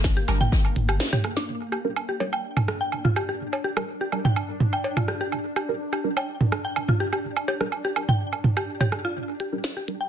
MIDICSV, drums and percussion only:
0, 0, Header, 1, 2, 480
1, 0, Start_track
1, 0, Key_signature, -2, "minor"
1, 0, Tempo, 480000
1, 1482, Time_signature, 4, 2, 24, 8
1, 10088, End_track
2, 0, Start_track
2, 0, Title_t, "Drums"
2, 41, Note_on_c, 9, 77, 43
2, 42, Note_on_c, 9, 36, 101
2, 42, Note_on_c, 9, 38, 94
2, 46, Note_off_c, 9, 38, 0
2, 46, Note_on_c, 9, 38, 115
2, 141, Note_off_c, 9, 77, 0
2, 142, Note_off_c, 9, 36, 0
2, 146, Note_off_c, 9, 38, 0
2, 279, Note_on_c, 9, 38, 105
2, 281, Note_on_c, 9, 42, 91
2, 282, Note_on_c, 9, 77, 75
2, 283, Note_on_c, 9, 82, 80
2, 379, Note_off_c, 9, 38, 0
2, 381, Note_off_c, 9, 42, 0
2, 381, Note_off_c, 9, 77, 0
2, 383, Note_off_c, 9, 82, 0
2, 406, Note_on_c, 9, 45, 86
2, 506, Note_off_c, 9, 45, 0
2, 521, Note_on_c, 9, 82, 83
2, 522, Note_on_c, 9, 36, 115
2, 524, Note_on_c, 9, 38, 98
2, 621, Note_off_c, 9, 82, 0
2, 622, Note_off_c, 9, 36, 0
2, 624, Note_off_c, 9, 38, 0
2, 647, Note_on_c, 9, 77, 43
2, 747, Note_off_c, 9, 77, 0
2, 758, Note_on_c, 9, 82, 67
2, 762, Note_on_c, 9, 42, 88
2, 762, Note_on_c, 9, 45, 81
2, 858, Note_off_c, 9, 82, 0
2, 861, Note_off_c, 9, 45, 0
2, 862, Note_off_c, 9, 42, 0
2, 888, Note_on_c, 9, 77, 74
2, 988, Note_off_c, 9, 77, 0
2, 997, Note_on_c, 9, 38, 110
2, 1001, Note_off_c, 9, 38, 0
2, 1001, Note_on_c, 9, 38, 93
2, 1009, Note_on_c, 9, 82, 82
2, 1101, Note_off_c, 9, 38, 0
2, 1109, Note_off_c, 9, 82, 0
2, 1128, Note_on_c, 9, 45, 86
2, 1128, Note_on_c, 9, 56, 69
2, 1131, Note_on_c, 9, 42, 37
2, 1228, Note_off_c, 9, 45, 0
2, 1228, Note_off_c, 9, 56, 0
2, 1231, Note_off_c, 9, 42, 0
2, 1240, Note_on_c, 9, 82, 64
2, 1241, Note_on_c, 9, 42, 90
2, 1244, Note_on_c, 9, 37, 63
2, 1244, Note_on_c, 9, 77, 43
2, 1340, Note_off_c, 9, 82, 0
2, 1341, Note_off_c, 9, 42, 0
2, 1344, Note_off_c, 9, 37, 0
2, 1344, Note_off_c, 9, 77, 0
2, 1366, Note_on_c, 9, 38, 63
2, 1466, Note_off_c, 9, 38, 0
2, 1724, Note_on_c, 9, 77, 41
2, 1824, Note_off_c, 9, 77, 0
2, 1964, Note_on_c, 9, 77, 73
2, 2064, Note_off_c, 9, 77, 0
2, 2203, Note_on_c, 9, 56, 63
2, 2303, Note_off_c, 9, 56, 0
2, 2328, Note_on_c, 9, 77, 43
2, 2428, Note_off_c, 9, 77, 0
2, 2567, Note_on_c, 9, 45, 79
2, 2567, Note_on_c, 9, 77, 74
2, 2667, Note_off_c, 9, 45, 0
2, 2667, Note_off_c, 9, 77, 0
2, 2682, Note_on_c, 9, 37, 66
2, 2782, Note_off_c, 9, 37, 0
2, 2922, Note_on_c, 9, 77, 43
2, 3022, Note_off_c, 9, 77, 0
2, 3048, Note_on_c, 9, 45, 81
2, 3149, Note_off_c, 9, 45, 0
2, 3163, Note_on_c, 9, 77, 70
2, 3263, Note_off_c, 9, 77, 0
2, 3528, Note_on_c, 9, 56, 57
2, 3528, Note_on_c, 9, 77, 43
2, 3629, Note_off_c, 9, 56, 0
2, 3629, Note_off_c, 9, 77, 0
2, 3768, Note_on_c, 9, 37, 57
2, 3768, Note_on_c, 9, 77, 74
2, 3867, Note_off_c, 9, 37, 0
2, 3867, Note_off_c, 9, 77, 0
2, 4123, Note_on_c, 9, 77, 45
2, 4223, Note_off_c, 9, 77, 0
2, 4249, Note_on_c, 9, 45, 85
2, 4349, Note_off_c, 9, 45, 0
2, 4364, Note_on_c, 9, 77, 76
2, 4464, Note_off_c, 9, 77, 0
2, 4603, Note_on_c, 9, 45, 81
2, 4703, Note_off_c, 9, 45, 0
2, 4728, Note_on_c, 9, 77, 42
2, 4828, Note_off_c, 9, 77, 0
2, 4842, Note_on_c, 9, 56, 61
2, 4942, Note_off_c, 9, 56, 0
2, 4968, Note_on_c, 9, 45, 82
2, 4968, Note_on_c, 9, 77, 79
2, 5068, Note_off_c, 9, 45, 0
2, 5068, Note_off_c, 9, 77, 0
2, 5082, Note_on_c, 9, 37, 58
2, 5182, Note_off_c, 9, 37, 0
2, 5323, Note_on_c, 9, 77, 45
2, 5423, Note_off_c, 9, 77, 0
2, 5563, Note_on_c, 9, 77, 76
2, 5663, Note_off_c, 9, 77, 0
2, 5928, Note_on_c, 9, 77, 44
2, 6028, Note_off_c, 9, 77, 0
2, 6167, Note_on_c, 9, 56, 60
2, 6167, Note_on_c, 9, 77, 81
2, 6267, Note_off_c, 9, 56, 0
2, 6267, Note_off_c, 9, 77, 0
2, 6406, Note_on_c, 9, 45, 77
2, 6506, Note_off_c, 9, 45, 0
2, 6522, Note_on_c, 9, 37, 61
2, 6522, Note_on_c, 9, 77, 45
2, 6622, Note_off_c, 9, 37, 0
2, 6622, Note_off_c, 9, 77, 0
2, 6762, Note_on_c, 9, 77, 78
2, 6861, Note_off_c, 9, 77, 0
2, 6885, Note_on_c, 9, 45, 82
2, 6985, Note_off_c, 9, 45, 0
2, 7126, Note_on_c, 9, 77, 44
2, 7226, Note_off_c, 9, 77, 0
2, 7365, Note_on_c, 9, 77, 77
2, 7465, Note_off_c, 9, 77, 0
2, 7480, Note_on_c, 9, 56, 60
2, 7580, Note_off_c, 9, 56, 0
2, 7606, Note_on_c, 9, 37, 55
2, 7706, Note_off_c, 9, 37, 0
2, 7721, Note_on_c, 9, 77, 44
2, 7820, Note_off_c, 9, 77, 0
2, 7961, Note_on_c, 9, 77, 76
2, 8061, Note_off_c, 9, 77, 0
2, 8086, Note_on_c, 9, 45, 82
2, 8186, Note_off_c, 9, 45, 0
2, 8326, Note_on_c, 9, 77, 44
2, 8426, Note_off_c, 9, 77, 0
2, 8442, Note_on_c, 9, 45, 77
2, 8542, Note_off_c, 9, 45, 0
2, 8567, Note_on_c, 9, 77, 75
2, 8667, Note_off_c, 9, 77, 0
2, 8805, Note_on_c, 9, 45, 81
2, 8805, Note_on_c, 9, 56, 61
2, 8905, Note_off_c, 9, 45, 0
2, 8905, Note_off_c, 9, 56, 0
2, 8921, Note_on_c, 9, 37, 54
2, 8921, Note_on_c, 9, 77, 44
2, 9021, Note_off_c, 9, 37, 0
2, 9021, Note_off_c, 9, 77, 0
2, 9400, Note_on_c, 9, 42, 88
2, 9500, Note_off_c, 9, 42, 0
2, 9640, Note_on_c, 9, 38, 94
2, 9740, Note_off_c, 9, 38, 0
2, 9881, Note_on_c, 9, 42, 93
2, 9981, Note_off_c, 9, 42, 0
2, 10088, End_track
0, 0, End_of_file